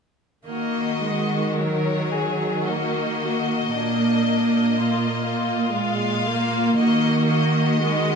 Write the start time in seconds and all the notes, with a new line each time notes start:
0.46 D#3 A#3 F#4 D#5
1.04 G#3
1.57 F#3 A#4 C#5
2.11 G#4
2.66 A#3 F#4 D#5
3.21 F#4
3.73 A#2 A#3 D4
4.78 F4
5.25 F4
5.74 G#3 F5
6.26 A#3
6.78 D#3 A#3 F#4 D#5
7.29 D#5
7.80 G#3 F#4